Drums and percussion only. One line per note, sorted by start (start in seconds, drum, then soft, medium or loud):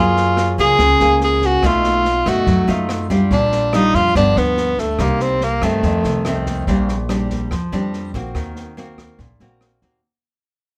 0.16 snare soft
0.37 cross-stick medium
0.37 snare soft
0.58 kick soft
0.58 snare soft
0.79 kick soft
0.79 cross-stick soft
0.79 snare soft
1.00 snare soft
1.21 snare soft
1.42 kick soft
1.42 snare soft
1.63 kick medium
1.63 cross-stick medium
1.63 snare soft
1.84 snare soft
2.05 snare soft
2.26 kick soft
2.26 cross-stick medium
2.26 snare soft
2.47 kick medium
2.47 snare soft
2.68 snare soft
2.89 cross-stick medium
2.89 snare soft
3.10 kick soft
3.10 snare soft
3.31 kick medium
3.31 snare soft
3.52 snare soft
3.73 cross-stick medium
3.73 snare soft
3.94 kick soft
3.94 snare soft
4.15 kick medium
4.15 cross-stick medium
4.15 snare soft
4.36 snare soft
4.57 snare soft
4.78 kick soft
4.78 snare soft
4.99 kick medium
4.99 cross-stick medium
4.99 snare soft
5.20 snare soft
5.41 snare soft
5.62 kick soft
5.62 cross-stick medium
5.62 snare soft
5.83 kick soft
5.83 snare soft
6.04 snare soft
6.25 cross-stick medium
6.25 snare soft
6.46 kick soft
6.46 snare soft
6.67 kick medium
6.67 snare soft
6.88 snare soft
7.09 cross-stick medium
7.09 snare soft
7.30 kick soft
7.30 snare soft
7.51 kick medium
7.51 cross-stick medium
7.51 snare soft
7.72 snare soft
7.93 snare soft
8.14 kick soft
8.14 snare soft
8.35 kick medium
8.35 cross-stick soft
8.35 snare soft
8.56 snare soft
8.77 snare soft
8.98 kick soft
8.98 cross-stick soft
8.98 snare soft
9.19 kick soft
9.19 snare soft
9.40 snare soft
9.61 cross-stick soft
9.61 snare soft
9.82 kick soft
9.82 snare soft